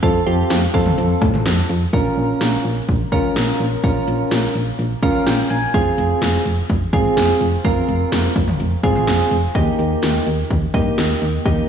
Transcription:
0.03 F2 C4 F4 A4, kick, closed hi-hat
0.27 F2 C4 F4 G4, closed hi-hat
0.50 F2, snare, closed hi-hat
0.74 F2 C4 F4 A4, kick, closed hi-hat
0.86 mid tom
0.98 F2, closed hi-hat
1.22 A2, kick, closed hi-hat, mid tom, cowbell
1.34 mid tom
1.46 F2, snare, closed hi-hat
1.69 F2, closed hi-hat
1.93 A#1 C#4 F4 A#4, kick
2.17 A#1
2.41 A#1, snare
2.65 A#1
2.89 A#1, kick
3.12 C#2 C#4 F4 A#4, kick
3.36 A#1, snare
3.60 A#1
3.84 A#1 C#4 F4 A#4, kick, closed hi-hat
4.07 A#1, closed hi-hat
4.31 A#1, snare, closed hi-hat
4.55 A#1, closed hi-hat
4.79 A#1, closed hi-hat
5.03 C#2 C#4 F4 A#4 F5, kick, closed hi-hat
5.26 A#1 G5, snare, closed hi-hat
5.50 A#1 G#5, closed hi-hat
5.74 F1 C4 F4 G#4, kick, closed hi-hat
5.98 F1, closed hi-hat
6.21 F1, snare, closed hi-hat
6.46 F1, closed hi-hat
6.70 F1, kick, closed hi-hat
6.93 G#1 C4 F4 G#4, kick, closed hi-hat
7.17 F1, snare, closed hi-hat
7.41 F1, closed hi-hat
7.65 F1 C4 F4 A#4, kick, closed hi-hat
7.88 F1, closed hi-hat
8.12 F1, snare, closed hi-hat
8.36 F1, kick, closed hi-hat
8.48 mid tom
8.60 F1, closed hi-hat
8.83 G#1 C4 F4 G#4, kick, closed hi-hat, mid tom
8.96 mid tom
9.07 F1, snare, closed hi-hat
9.31 F1, closed hi-hat
9.55 D#2 A#3 D#4 G4, kick, closed hi-hat
9.79 D#2, closed hi-hat
10.02 D#2, snare, closed hi-hat
10.27 D#2, closed hi-hat
10.50 D#2, kick, closed hi-hat
10.74 G2 A#3 D#4 G4, kick, closed hi-hat
10.98 D#2, snare, closed hi-hat
11.22 D#2, closed hi-hat
11.45 D#2 A#3 D#4 G4, kick, closed hi-hat

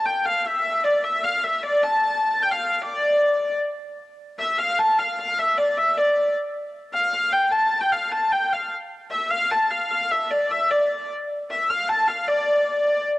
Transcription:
0.05 G5
0.25 F5
0.46 E5
0.84 D5
1.04 E5
1.24 F5
1.44 E5
1.63 D5
1.83 A5
2.42 G5
2.51 F5
2.81 D5
4.39 E5
4.58 F5
4.79 A5
4.99 F5
5.19 F5
5.39 E5
5.58 D5
5.77 E5
5.98 D5
6.94 F5
7.13 F5
7.33 G5
7.51 A5
7.81 G5
7.92 F5
8.12 A5
8.32 G5
8.53 F5
9.11 E5
9.30 F5
9.51 A5
9.71 F5
9.91 F5
10.11 E5
10.31 D5
10.51 E5
10.71 D5
11.51 E5
11.70 F5
11.89 A5
12.08 F5
12.28 D5

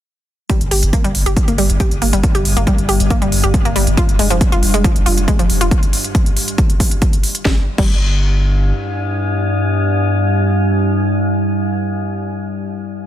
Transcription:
0.50 G2 G3, kick, closed hi-hat
0.61 G1, closed hi-hat
0.71 G1 G4, open hi-hat
0.83 G1, closed hi-hat
0.93 A#3, kick, closed hi-hat
1.04 G1 G3, closed hi-hat
1.15 G1, open hi-hat
1.26 G1 G4, closed hi-hat
1.37 kick, closed hi-hat
1.48 G1 A#3, closed hi-hat
1.58 G1 G3, open hi-hat
1.70 G1, closed hi-hat
1.80 G4, kick, closed hi-hat
1.91 G1, closed hi-hat
2.02 G1 A#3, open hi-hat
2.13 G1 G3, closed hi-hat
2.23 kick, closed hi-hat
2.35 G1 G4, closed hi-hat
2.45 G1, open hi-hat
2.57 G1 A#3, closed hi-hat
2.67 G3, kick, closed hi-hat
2.78 G1, closed hi-hat
2.89 G1 G4, open hi-hat
3.00 G1, closed hi-hat
3.10 A#3, kick, closed hi-hat
3.22 G1 G3, closed hi-hat
3.32 G1, open hi-hat
3.44 G1 G4, closed hi-hat
3.54 kick, closed hi-hat
3.65 G1 A#3, closed hi-hat
3.76 G1 G3, open hi-hat
3.87 G1, closed hi-hat
3.97 F4, kick, closed hi-hat
4.09 F1, closed hi-hat
4.19 F1 G#3, open hi-hat
4.30 F1 F3, closed hi-hat
4.41 kick, closed hi-hat
4.52 F1 F4, closed hi-hat
4.63 F1, open hi-hat
4.74 F1 G#3, closed hi-hat
4.84 F3, kick, closed hi-hat
4.96 F1, closed hi-hat
5.06 F1 F4, open hi-hat
5.17 F1, closed hi-hat
5.28 G#3, kick, closed hi-hat
5.39 F1 F3, closed hi-hat
5.50 F1, open hi-hat
5.61 F1 F4, closed hi-hat
5.71 kick, closed hi-hat
5.83 closed hi-hat
5.93 open hi-hat
6.04 closed hi-hat
6.15 kick, closed hi-hat
6.26 closed hi-hat
6.37 open hi-hat
6.48 closed hi-hat
6.58 kick, closed hi-hat
6.70 closed hi-hat
6.80 kick, open hi-hat
6.91 closed hi-hat
7.02 kick, closed hi-hat
7.13 closed hi-hat
7.23 open hi-hat
7.35 closed hi-hat
7.45 G1 G2 G3, kick, snare
7.78 G1 G3, kick, crash

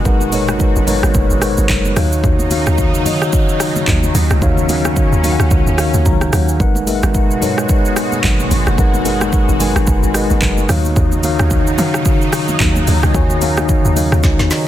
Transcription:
Already playing: B2 G#3 D#4 F#4 A#4 B4 G#5
0.05 G#1 A#2 G#3 D#4 A#4 B4 F#5, kick, shaker
0.20 high conga, shaker
0.32 G#3 D#4 A#4 B4 C#5, open hi-hat, high conga, shaker
0.48 cross-stick, high conga, shaker
0.60 kick, shaker
0.76 G#1, shaker
0.87 G#3 D#4 A#4 B4 C#5, open hi-hat, high conga, low conga, shaker
1.03 G#1, cross-stick, shaker
1.14 F#1, kick, shaker
1.30 G#1, shaker
1.41 G#3 D#4 A#4 B4 C5, cross-stick, open hi-hat, shaker
1.49 C#5
1.58 G#1, high conga, shaker
1.69 F#1, kick, clap, low conga, shaker
1.85 high conga, shaker
1.96 D#2 C#3 D#3 F#3 D#4 F#4 C#5 F5, cross-stick, open hi-hat, high conga, low conga, shaker
2.12 shaker
2.24 D#2, kick, shaker
2.39 high conga, shaker
2.50 D#3 D#4 F#4 C#5 F5, open hi-hat, high conga, shaker
2.67 D#2, cross-stick, high conga, shaker
2.78 kick, shaker
2.94 shaker
3.05 D#3 D#4 F#4 C#5 D#5, open hi-hat, high conga, low conga, shaker
3.22 cross-stick, shaker
3.33 kick, shaker
3.49 shaker
3.60 cross-stick, open hi-hat, shaker
3.76 high conga, shaker
3.87 D#2, kick, clap, low conga, shaker
4.03 high conga, shaker
4.15 D#2 C#4, open hi-hat, high conga, low conga, shaker
4.31 C#2, cross-stick, shaker
4.41 D#2 D#3 D#4 F#4 C#5 F5, kick, shaker
4.57 high conga, shaker
4.69 D#3 D#4 F#4 C#5 F5, open hi-hat, high conga, shaker
4.85 cross-stick, high conga, shaker
4.96 kick, shaker
5.12 D#2, shaker
5.23 D#3 D#4 F#4 C#5 F5, open hi-hat, high conga, low conga, shaker
5.32 F#5
5.39 D#2, cross-stick, shaker
5.51 C#2, kick, shaker
5.67 D#2, shaker
5.78 D#3 D#4 F#4 C#5 F5, cross-stick, open hi-hat, shaker
5.94 D#2, high conga, shaker
6.05 C#2 A#5, kick, low conga, shaker
6.21 cross-stick, high conga, shaker
6.33 D#2 F#5, cross-stick, open hi-hat, high conga, low conga, shaker
6.49 shaker
6.59 G#1 B2 G#3 D#4 F#4 A#4 B4 F#5, kick, shaker
6.75 high conga, shaker
6.87 G#3 D#4 A#4 B4 E5, open hi-hat, high conga, shaker
6.95 F#5
7.03 G#1, cross-stick, high conga, shaker
7.14 kick, shaker
7.31 shaker
7.41 G#2 G#3 D#4 A#4 B4 C#5, open hi-hat, high conga, low conga, shaker
7.58 cross-stick, shaker
7.69 kick, shaker
7.85 shaker
7.96 cross-stick, open hi-hat, shaker
8.12 high conga, shaker
8.24 G#1, kick, clap, low conga, shaker
8.40 high conga, shaker
8.51 G#1, open hi-hat, high conga, low conga, shaker
8.67 F#1, cross-stick, shaker
8.78 G#1 G#3 D#4 A#4 B4 F#5, kick, shaker
8.94 high conga, shaker
9.05 G#3 D#4 A#4 B4 F#5, open hi-hat, high conga, shaker
9.21 cross-stick, high conga, shaker
9.32 kick, shaker
9.49 G#1, shaker
9.59 G#3 D#4 A#4 B4 G#5, open hi-hat, high conga, low conga, shaker
9.76 G#1, cross-stick, shaker
9.87 F#1, kick, shaker
10.03 G#1, shaker
10.14 G#3 D#4 A#4 B4 D#5, cross-stick, open hi-hat, shaker
10.30 G#1, high conga, shaker
10.42 F#1, kick, clap, low conga, shaker
10.58 high conga, shaker
10.68 D#2 C#3 D#3 F#3 D#4 F#4 C#5 F5, cross-stick, open hi-hat, high conga, low conga, shaker
10.85 shaker
10.96 D#2, kick, shaker
11.12 high conga, shaker
11.23 D#3 D#4 F#4 C#5 F5, open hi-hat, high conga, shaker
11.39 D#2, cross-stick, high conga, shaker
11.51 kick, shaker
11.67 shaker
11.78 D#3 D#4 F#4 C#5 F5, open hi-hat, high conga, low conga, shaker
11.94 cross-stick, shaker
12.05 kick, shaker
12.21 shaker
12.33 cross-stick, open hi-hat, shaker
12.48 high conga, shaker
12.60 D#2, kick, clap, low conga, shaker
12.76 high conga, shaker
12.87 D#2, open hi-hat, high conga, low conga, shaker
13.03 C#2, cross-stick, shaker
13.14 D#2 D#3 D#4 F#4 C#5 G#5, kick, shaker
13.30 high conga, shaker
13.41 D#3 D#4 F#4 C#5 F5, open hi-hat, high conga, shaker
13.57 cross-stick, high conga, shaker
13.69 kick, shaker
13.85 D#2, shaker
13.96 D#3 D#4 F#4 C#5 F5, open hi-hat, high conga, low conga, shaker
14.12 D#2, cross-stick, shaker
14.23 C#2, kick, snare, shaker
14.39 D#2, snare, shaker
14.50 D#3 D#4 F#4 C#5 D#5, snare, open hi-hat, shaker

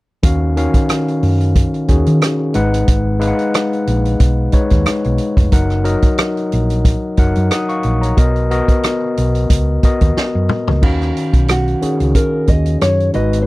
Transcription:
0.23 D#2 D#3 C#4 F#4 F5, kick, closed hi-hat
0.56 D#3 C#4 F#4 F5, closed hi-hat
0.74 kick, closed hi-hat
0.89 cross-stick, closed hi-hat
1.08 closed hi-hat
1.23 F#2, open hi-hat
1.41 closed hi-hat
1.55 kick, closed hi-hat
1.74 closed hi-hat
1.88 D#2 D#3 C#4 F#4 G#4, kick, closed hi-hat
2.06 D#3, closed hi-hat
2.21 cross-stick, closed hi-hat
2.54 G#1 G#3 D#4 B4 F#5, closed hi-hat
2.74 closed hi-hat
2.88 G#1, kick, closed hi-hat
3.19 G#3 D#4 B4 F5, closed hi-hat
3.28 F#5
3.39 closed hi-hat
3.54 cross-stick, closed hi-hat
3.73 closed hi-hat
3.87 A#1, closed hi-hat
4.05 closed hi-hat
4.20 B1, kick, closed hi-hat
4.52 G#3 D#4 B4 C#5, kick, closed hi-hat
4.70 D#2, kick, closed hi-hat
4.86 cross-stick, closed hi-hat
5.04 B1, closed hi-hat
5.18 closed hi-hat
5.37 F1, kick, closed hi-hat
5.51 F#1 F#3 D#4 A#4 F#5, kick, closed hi-hat
5.70 cross-stick, closed hi-hat
5.84 F#3 D#4 A#4 D#5, closed hi-hat
6.02 kick, closed hi-hat
6.18 cross-stick, closed hi-hat
6.37 closed hi-hat
6.52 A#1, closed hi-hat
6.70 closed hi-hat
6.85 kick, closed hi-hat
7.17 F#1 F#3 D#4 A#4 F#5, kick, closed hi-hat
7.35 F#2, closed hi-hat
7.51 F#5 D#6, cross-stick, closed hi-hat
7.69 F5 C#6, closed hi-hat
7.83 A#1, closed hi-hat
8.01 C#5 A#5, closed hi-hat
8.17 B1 B3 F#4 A#4 D#5, kick, closed hi-hat
8.36 closed hi-hat
8.50 B3 F#4 A#4 D#5, closed hi-hat
8.68 kick, closed hi-hat
8.83 cross-stick, closed hi-hat
9.17 B1, closed hi-hat
9.35 closed hi-hat
9.50 C#2, kick, closed hi-hat
9.83 B3 F#4 A#4 D#5, kick, closed hi-hat
10.01 D#2, kick, closed hi-hat
10.17 snare
10.35 F#2
10.49 mid tom
10.68 C#2, floor tom
10.82 D#2 D#3 C#4 F#4 F5, kick, crash
11.01 cross-stick, closed hi-hat
11.17 closed hi-hat
11.33 B1, kick, closed hi-hat
11.48 F#4, cross-stick, closed hi-hat
11.67 closed hi-hat
11.81 D#3 C#4 F#4 G#4, muted fingered electric bass stroke, closed hi-hat
12.00 C#2, closed hi-hat
12.15 A#4, kick, closed hi-hat
12.47 D#2 D#5, kick, closed hi-hat
12.66 closed hi-hat
12.81 F#2 C#5, cross-stick, closed hi-hat
13.00 closed hi-hat
13.14 G#1 G#3 D#4 F#4 B4 D#5, closed hi-hat
13.33 closed hi-hat
13.42 C5

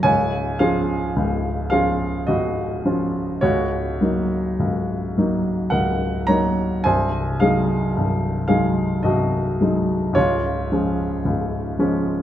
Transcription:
0.03 C#1 C#2 C#5 G#5
0.59 F3 C#4 F4 G#4 F5
1.16 C#1 C#2
1.70 F3 C#4 F4 G#4 F5
2.27 C#1 C#2 F#4 D#5
2.85 F3 C#4 F4
3.41 C#1 C#2 F#4 C#5
4.01 F#3 A#3 D#4
4.60 C#1 C#2
5.18 F#3 A#3 D#4
5.70 C#1 C#2 A#4 F#5
6.27 F#3 A#3 D#4 C#5 A#5
6.84 C1 C2 C5 G#5
7.40 F#3 G#3 D#4 G#4 F5
7.97 C1 C2
8.48 F#3 G#3 D#4 G#4 F5
9.03 C1 C2 F#4 D#5
9.61 F#3 G#3 D#4
10.13 C#1 C#2 F4 C#5
10.72 F3 G#3 C#4
11.25 C#1 C#2
11.79 F3 G#3 C#4

